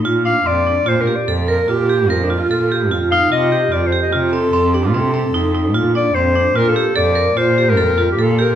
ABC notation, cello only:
X:1
M:7/4
L:1/8
Q:1/4=147
K:Bb
V:1 name="Cello" clef=bass
B,,2 F,,2 B,, z F,,2 B,,2 F,,2 B,,2 | F,,2 C,2 F,, z C,2 F,,2 C,2 F,,2 | B,,2 F,,2 B,, z F,,2 B,,2 F,,2 B,,2 |]